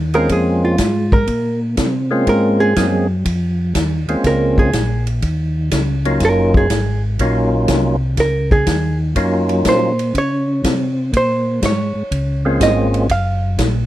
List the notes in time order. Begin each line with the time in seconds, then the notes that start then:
Already playing: D#2
0.14 G#3 A#3 C4 C#4 F4 A#4, ride
0.29 F2 G#4, kick, ride
0.65 F4
0.78 G#2, kick, snare, hi-hat pedal, ride
1.12 A#4, kick
1.27 A#2, kick, ride
1.77 C3, kick, snare, hi-hat pedal, ride
2.11 G#3 A#3 C4 C#4 F4
2.26 G#2 A#4, kick, ride
2.60 G#4
2.76 F#2 G#3 A#3 C4 C#4 G#4, kick, snare, hi-hat pedal, ride
3.25 F2, kick, ride
3.75 D#2, kick, snare, hi-hat pedal, ride
4.08 D#2 G#3 A#3 C4 C#4 F4, ride
4.24 C#2 A#4, kick, snare, ride
4.58 G#4, kick
4.73 A#1, kick, snare, hi-hat pedal, ride
5.07 ride
5.22 D#2, kick, ride
5.71 C#2, kick, snare, hi-hat pedal, ride
6.05 F#3 A#3 C#4 D#4 F4, ride
6.20 F#1, kick, snare, ride
6.25 A#4
6.54 G#4, kick
6.70 G#1, kick, snare, hi-hat pedal, ride
7.19 A#1 F#3 A#3 C#4 D#4 F4, kick, ride
7.68 C2, kick, snare, hi-hat pedal, ride
8.17 C#2 A#4, kick, snare, ride
8.51 G#4, kick
8.66 D#2, kick, snare, hi-hat pedal, ride
9.15 F#2 F#3 A#3 C#4 D#4 F4, kick, ride
9.49 ride
9.65 A#2 C5, kick, snare, hi-hat pedal, ride
9.99 ride
10.14 C#3, kick, ride
10.18 C#5
10.64 C3, kick, snare, hi-hat pedal, ride
11.13 A#2, kick, ride
11.17 C5
11.62 G#2 C#5, kick, snare, hi-hat pedal, ride
11.95 G#2
12.11 C#2, kick, ride
12.45 G#3 A#3 C4 C#4 F4
12.60 G#1 D#5, kick, snare, hi-hat pedal, ride
12.94 ride
13.09 F#1 F5, kick, ride
13.58 A#1, kick, snare, hi-hat pedal, ride